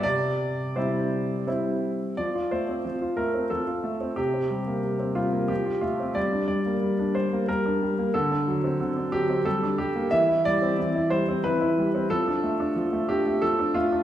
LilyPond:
<<
  \new Staff \with { instrumentName = "Grand piano" } { \time 3/4 \key c \major \tempo 4 = 91 d''4 c''4 r4 | \key f \major d''8 c''4 bes'8 a'4 | g'4. f'8 g'8 f'8 | d''8 d''4 c''8 bes'4 |
a'4. g'8 a'8 g'8 | \key c \major e''8 d''4 c''8 b'4 | a'4. g'8 a'8 f'8 | }
  \new Staff \with { instrumentName = "Grand piano" } { \time 3/4 \key c \major c4 <g c' e'>4 <g c' e'>4 | \key f \major f16 f'16 a16 c'16 f16 f'16 a16 c'16 f16 f'16 a16 c'16 | c16 c'16 g16 bes16 c16 c'16 g16 bes16 f16 f'16 a16 c'16 | g16 d'16 g16 bes16 g16 d'16 g16 bes16 g16 d'16 g16 bes16 |
d16 d'16 fis16 c'16 d16 d'16 fis16 c'16 g16 d'16 g16 bes16 | \key c \major e16 e'16 g16 c'16 e16 e'16 g16 c'16 e16 e'16 g16 c'16 | f16 d'16 a16 d'16 f16 a16 d'16 a16 f16 d'16 a16 d'16 | }
>>